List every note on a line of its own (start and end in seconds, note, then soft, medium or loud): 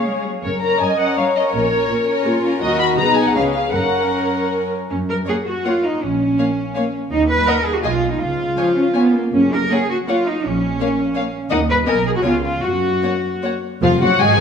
0.00 0.22 C#4 soft
0.00 0.22 G#4 soft
0.00 0.22 C#5 soft
0.00 0.24 F5 soft
0.05 0.24 G#3 soft
0.24 0.43 F#3 soft
0.42 0.75 F#1 medium
0.42 0.74 F#2 medium
0.42 0.78 A#4 soft
0.42 0.61 C#5 soft
0.61 0.99 C#4 soft
0.61 0.98 A#4 soft
0.61 0.80 A#5 medium
0.80 1.12 F#2 soft
0.80 1.18 D#5 medium
0.80 0.99 G#5 medium
0.99 1.36 C#4 soft
0.99 1.35 A#4 soft
0.99 1.17 F#5 soft
1.17 1.48 F#2 soft
1.17 1.54 C#5 soft
1.17 1.25 F5 medium
1.36 1.54 C#4 soft
1.36 1.54 A#4 soft
1.36 1.43 D#5 medium
1.54 1.84 A#1 medium
1.54 1.84 A#2 medium
1.54 1.71 C#4 soft
1.54 1.89 A#4 soft
1.54 1.71 A#4 soft
1.54 2.42 C#5 medium
1.72 2.07 C#4 soft
1.72 2.07 A#4 soft
1.89 2.20 A#2 medium
1.89 2.25 A#4 medium
2.08 2.43 C#4 soft
2.08 2.43 A#4 soft
2.25 2.56 A#2 medium
2.25 2.62 F4 medium
2.44 2.62 C#4 soft
2.44 2.60 A#4 soft
2.61 2.95 D#2 medium
2.61 2.95 D#3 medium
2.61 2.95 F#4 soft
2.61 2.97 F#4 soft
2.61 2.95 A#4 medium
2.61 2.78 D#5 medium
2.80 2.87 B5 medium
2.98 3.32 B1 medium
2.98 3.34 B2 medium
2.98 3.35 D#4 soft
2.98 3.34 G#4 medium
2.98 3.34 B4 soft
2.98 3.16 A#5 medium
3.16 3.25 G#5 medium
3.25 3.35 F#5 medium
3.34 3.70 C#2 medium
3.34 3.73 C#3 medium
3.34 3.72 C#4 soft
3.34 3.73 G#4 medium
3.34 3.73 B4 soft
3.34 3.43 F5 medium
3.54 3.73 F5 medium
3.73 4.10 F#1 soft
3.73 4.71 F#2 soft
3.73 4.70 C#4 soft
3.73 4.69 A#4 soft
3.73 4.72 A#4 soft
3.73 4.50 F#5 medium
4.90 5.21 F#2 medium
4.90 4.98 C#4 medium
5.09 5.17 A#4 medium
5.26 5.36 A#3 soft
5.26 5.35 G#4 medium
5.26 5.34 C#5 soft
5.26 5.37 F#5 soft
5.47 5.65 F#4 medium
5.65 5.73 A#3 soft
5.65 5.84 F4 medium
5.65 5.74 C#5 soft
5.65 5.73 F#5 soft
5.84 6.02 D#4 medium
6.02 6.33 A#1 medium
6.02 6.93 C#4 medium
6.39 6.47 A#3 soft
6.39 6.47 C#5 soft
6.39 6.47 F5 soft
6.75 6.84 A#3 soft
6.75 6.83 C#5 soft
6.75 6.83 F5 soft
7.11 7.41 D#2 medium
7.11 7.28 D#4 medium
7.30 7.47 B4 medium
7.47 7.56 A#3 medium
7.47 7.65 A#4 medium
7.47 7.56 D#5 medium
7.47 7.55 F#5 medium
7.65 7.74 G#4 medium
7.75 7.84 F#4 medium
7.83 8.14 B1 medium
7.83 7.91 G#3 soft
7.83 8.11 F4 medium
7.83 7.92 D#5 soft
7.83 7.91 G#5 medium
8.11 8.20 D#4 medium
8.20 8.52 C#2 medium
8.20 9.15 F4 medium
8.57 8.76 F3 medium
8.57 8.66 C#5 soft
8.57 8.65 G#5 soft
8.77 8.84 C#4 medium
8.95 9.14 B3 medium
8.95 9.03 C#5 soft
8.95 9.03 G#5 soft
9.14 9.34 A#3 soft
9.34 9.66 F#1 medium
9.34 9.51 C#4 medium
9.53 9.72 A#4 medium
9.71 9.79 A#3 soft
9.71 9.90 G#4 medium
9.71 9.80 C#5 soft
9.71 9.79 F#5 soft
9.90 9.97 F#4 medium
10.08 10.16 A#3 soft
10.08 10.26 F4 medium
10.08 10.17 C#5 soft
10.08 10.16 F#5 soft
10.27 10.45 D#4 medium
10.45 10.74 A#1 medium
10.45 11.33 C#4 medium
10.80 10.88 A#3 medium
10.80 10.88 C#5 soft
10.80 10.88 F5 medium
11.15 11.25 A#3 soft
11.15 11.23 C#5 soft
11.15 11.24 F5 medium
11.50 11.81 D#2 medium
11.50 11.60 A#3 soft
11.50 11.58 D#4 medium
11.50 11.58 D#5 medium
11.50 11.59 F#5 medium
11.69 11.76 B4 medium
11.86 12.19 B1 medium
11.86 11.95 B3 medium
11.86 12.06 A#4 medium
11.86 11.94 D#5 soft
11.86 11.95 G#5 medium
12.06 12.10 G#4 medium
12.16 12.25 F#4 medium
12.23 12.57 C#2 medium
12.23 12.33 B3 medium
12.23 12.43 F4 medium
12.23 12.31 C#5 soft
12.23 12.32 G#5 soft
12.44 12.64 F4 medium
12.64 12.97 F#2 medium
12.64 13.44 F#4 medium
13.03 13.12 A#3 soft
13.03 13.11 C#5 soft
13.03 13.12 F#5 soft
13.42 13.50 A#3 soft
13.42 13.52 C#5 soft
13.42 13.52 F#5 soft
13.82 13.90 F1 medium
13.82 13.90 F2 medium
13.82 13.90 F3 medium
13.82 14.01 F4 medium
13.82 13.91 F5 medium
14.01 14.09 F#1 medium
14.01 14.09 F#2 medium
14.01 14.20 F#3 medium
14.01 14.20 F#4 medium
14.01 14.21 F#5 medium
14.19 14.38 G#1 medium
14.19 14.39 G#2 medium
14.19 14.39 G#3 medium
14.19 14.39 G#4 medium
14.19 14.40 G#5 medium